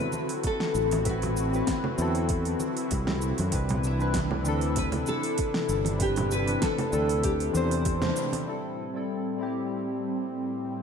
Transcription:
Already playing: D3 F#3 C4 E4 F#4 A4 B4
0.12 high conga, shaker
0.29 open hi-hat, shaker
0.44 A4, kick, open hi-hat, shaker
0.60 snare
0.75 A1, shaker
0.91 open hi-hat, high conga, shaker
1.04 F#3 C4 E4 B4, kick, open hi-hat, shaker
1.09 F#4
1.22 open hi-hat, low conga, shaker
1.37 shaker
1.53 F#3 C4 E4 B4, shaker
1.67 kick, snare, open hi-hat, high conga, shaker
1.84 low conga
1.96 E2 F#3 C4 E4, shaker
2.02 A4
2.15 open hi-hat, shaker
2.29 kick, open hi-hat, shaker
2.45 open hi-hat, shaker
2.60 high conga, shaker
2.77 open hi-hat, shaker
2.91 C2, kick, open hi-hat, shaker
3.07 snare, low conga
3.22 shaker
3.38 F#2, open hi-hat, high conga, shaker
3.51 C2 C3 E3 C4 D4 B4, kick, open hi-hat, shaker
3.69 open hi-hat, low conga, shaker
3.84 E4, shaker
3.98 E3 C4 D4 B4, shaker
4.14 kick, snare, open hi-hat, high conga, shaker
4.31 low conga
4.42 E3 C4 D4, shaker
4.47 D2 A4
4.61 open hi-hat, shaker
4.76 B4, kick, open hi-hat, shaker
4.92 open hi-hat, low conga, shaker
5.07 A4, high conga, shaker
5.23 open hi-hat, shaker
5.38 kick, open hi-hat, shaker
5.54 snare
5.69 G1, shaker
5.85 open hi-hat, high conga, shaker
5.99 E3 C4 D4 G4 B4, kick, open hi-hat, shaker
6.16 open hi-hat, low conga, shaker
6.31 B4, shaker
6.46 E3 C4 D4 B4, open hi-hat, shaker
6.62 A4, kick, snare, open hi-hat, high conga, shaker
6.78 open hi-hat, low conga, shaker
6.91 D2 E3 C4 D4 A4, shaker
7.09 open hi-hat, shaker
7.23 G4, kick, open hi-hat, shaker
7.40 open hi-hat, shaker
7.51 E2 E3 C4 D4, high conga
7.55 C5, shaker
7.71 open hi-hat, shaker
7.85 kick, open hi-hat, shaker
8.02 snare, low conga, shaker
8.16 shaker
8.33 open hi-hat, high conga, shaker
8.46 A2 G3 C4 E4 A4, shaker
8.64 shaker
8.78 shaker
8.94 G3 C4 E4 A4, shaker
9.10 shaker
9.37 G3 C4 E4
9.43 G4
9.58 shaker
9.88 shaker
10.03 shaker
10.34 shaker
10.64 shaker

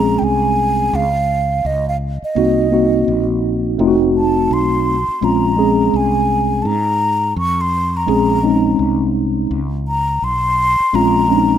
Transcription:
Already playing: A#1 G#3 C4 C#4 G#4 A#5
0.19 C2 G5
0.24 G#5
0.93 C#2 F5
1.65 C#2 D#5
1.89 F5
2.22 D#5, muted fretless electric bass stroke
2.35 C2 A#3 C4 D#4 F#4
2.71 A#3 C4 D#4 F#4
3.08 A#1
3.78 F1 A3 C4 D#4 F4
3.87 F#4
4.17 A5
4.51 B1 C6
5.08 muted fretless electric bass stroke
5.21 A#1 G#3 C4 C#4 F4 A#5
5.57 G#3 C4 C#4 G#4
5.94 C2 G#5
6.62 G#2 A5
6.67 A#5
7.36 F2 C#6
7.61 C6
7.97 A#5
8.07 A#1 G#3 C4 C#4 G#4
8.43 G#3 C4 C#4 D#4
8.79 C2
9.51 C#2
9.88 A#5
10.22 B1 C6
10.80 muted fretless electric bass stroke
10.93 A#1 G#3 C4 C#4 F4 A#5
11.28 G#3 C4 C#4 D4
11.37 D#4

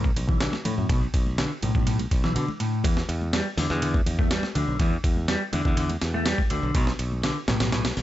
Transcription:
Already playing: B1
0.04 kick, high conga
0.16 B1, ride, low conga
0.29 E3, kick
0.40 D3, snare, ride
0.53 snare, high conga
0.65 A2, ride, low conga
0.78 F#2
0.89 B1 B2, kick, ride, high conga
1.14 B1, kick, ride
1.27 high conga
1.38 D3, snare, ride
1.62 B1 A2, ride, high conga
1.75 B1, kick, low conga
1.87 A2, ride
1.99 ride, high conga
2.11 B1, kick, ride
2.24 E3, snare
2.36 B2 D3, ride
2.48 high conga
2.60 A2, ride
2.84 E2 E3, kick, ride, high conga
2.97 snare
3.09 E2, ride
3.22 high conga
3.33 G3, snare, ride
3.57 E2 D3, snare, open hi-hat, high conga
3.70 E2, snare, low conga
3.82 D3, ride
3.94 kick, high conga
4.06 E2, ride, low conga
4.19 A3, kick
4.31 G3, snare, ride
4.43 snare, high conga
4.55 D2 D3, ride, low conga
4.67 B1
4.79 E2 E3, kick, ride, high conga
5.04 E2, kick, ride
5.17 high conga
5.28 G3, snare, ride
5.53 E2 D3, ride, high conga
5.65 E2, kick, low conga
5.77 D3, ride
5.90 ride, high conga
6.01 E2, snare, ride
6.14 A3
6.26 G3, snare, ride
6.38 kick, high conga
6.50 D2 D3, ride
6.63 B1
6.75 B1 B2, kick, ride, high conga
6.87 snare
6.99 B1, ride
7.12 high conga
7.24 D3, snare, ride
7.48 B1 A2, snare, ride, high conga
7.60 B1, snare, ride, low conga
7.72 A2, snare, ride
7.85 snare, ride, high conga
7.97 B1, snare, open hi-hat, low conga

